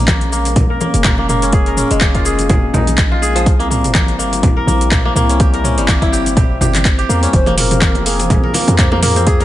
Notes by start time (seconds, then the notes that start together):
Already playing: A#1 G#3 A#3 C#4 D#4
0.08 A#3, kick, clap, closed hi-hat, high conga, shaker
0.21 closed hi-hat, high conga
0.32 A#3, shaker
0.45 closed hi-hat, muted conga, shaker
0.56 kick, closed hi-hat, high conga, low conga, shaker
0.70 A#4
0.80 A#3, muted conga, high conga, shaker
0.94 F1, closed hi-hat, shaker
1.04 A#3, kick, clap, closed hi-hat, low conga, shaker
1.18 A#3, muted conga
1.29 A#3, mid tom, shaker
1.42 C#4, closed hi-hat, shaker
1.53 G#4, kick, closed hi-hat, muted conga, shaker
1.66 A#4, closed hi-hat
1.77 C#4, mid tom, shaker
1.91 F1 G#3, closed hi-hat, muted conga, shaker
2.01 A#3, kick, clap, closed hi-hat, high conga, shaker
2.15 F4, kick, closed hi-hat
2.25 G#4, shaker
2.39 closed hi-hat, muted conga, shaker
2.49 G#4, kick, closed hi-hat, low conga, shaker
2.74 A#1 D#4, muted conga, low conga, shaker
2.87 closed hi-hat, high conga, shaker
2.98 kick, clap, closed hi-hat, shaker
3.11 F4, muted conga
3.22 G#4, shaker
3.35 F3, closed hi-hat, shaker
3.46 C2 G3 C4 E4, kick, closed hi-hat, muted conga, high conga, shaker
3.59 A#3, closed hi-hat
3.70 A#3, mid tom, shaker
3.84 G1, closed hi-hat, mid tom, muted conga, shaker
3.94 A#3, kick, clap, closed hi-hat, high conga, shaker
4.08 closed hi-hat, high conga
4.19 A#3, shaker
4.33 closed hi-hat, muted conga, shaker
4.43 kick, closed hi-hat, high conga, low conga, shaker
4.57 A#4
4.67 A#1 A#3, muted conga, high conga, shaker
4.81 closed hi-hat, shaker
4.92 A#3, kick, clap, closed hi-hat, low conga, shaker
5.05 A#3, muted conga
5.15 C2 A#3, mid tom, shaker
5.29 C#4, closed hi-hat, shaker
5.40 G4, kick, closed hi-hat, muted conga, high conga, shaker
5.54 A#4, closed hi-hat
5.64 C#4, mid tom, shaker
5.78 G1 G3, closed hi-hat, muted conga, shaker
5.88 A#3, kick, clap, closed hi-hat, high conga, shaker
6.02 E4, kick, closed hi-hat
6.12 G4, shaker
6.26 closed hi-hat, muted conga, shaker
6.37 G4, kick, closed hi-hat, low conga, shaker
6.61 G1 G4, muted conga, low conga, shaker
6.75 clap, closed hi-hat, high conga, shaker
6.85 kick, clap, closed hi-hat, shaker
6.98 G4, closed hi-hat, muted conga
7.09 E2 A#3, shaker
7.23 C#4, closed hi-hat, shaker
7.33 F1 F3 F4 G#4 C5, kick, closed hi-hat, muted conga, high conga, shaker
7.46 A#3, closed hi-hat, low bongo
7.57 A#3 A#4, mid tom, open hi-hat, shaker
7.71 closed hi-hat, mid tom, low bongo, muted conga, shaker
7.81 A#3, kick, clap, closed hi-hat, high conga, shaker
7.95 closed hi-hat, low bongo, high conga
8.06 A#3 G#4, open hi-hat, shaker
8.19 closed hi-hat, low bongo, muted conga, shaker
8.30 kick, closed hi-hat, high conga, low conga, shaker
8.43 A#4, low bongo
8.54 A#3 C5, open hi-hat, high bongo, muted conga, high conga, shaker
8.59 A#4
8.68 F2, closed hi-hat, low bongo, shaker
8.78 A#3 C#5, kick, clap, closed hi-hat, low conga, shaker
8.83 C5
8.92 A#3, high bongo, low bongo, muted conga
9.02 A#3 A#4, mid tom, open hi-hat, shaker
9.16 C4, closed hi-hat, low bongo, shaker
9.26 G#4, kick, closed hi-hat, muted conga, shaker
9.40 A#4, closed hi-hat, low bongo